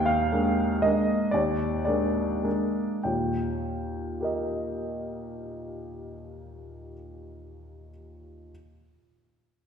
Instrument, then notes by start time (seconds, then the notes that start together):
upright piano
Already playing: D#2 G5
0.06 F5
0.32 G#3 A#3 D4
0.82 G#3 A#3 D4 D#5
1.31 D#2 D5
1.85 G#3 A#3 D4 D5
2.43 G#3 A#3 D4
3.03 D#2 A#2 G5
4.21 G4 A#4 D#5